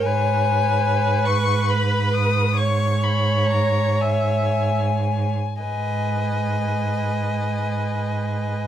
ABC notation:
X:1
M:6/8
L:1/16
Q:3/8=39
K:G#m
V:1 name="Violin"
g6 c'2 b2 d'2 | c'2 b2 a2 g6 | g12 |]
V:2 name="Violin"
c6 B6 | c8- c3 z | d12 |]
V:3 name="Viola"
B12 | c6 e3 z3 | B12 |]
V:4 name="Cello" clef=bass
G,,12- | G,,8- G,,3 z | G,,12 |]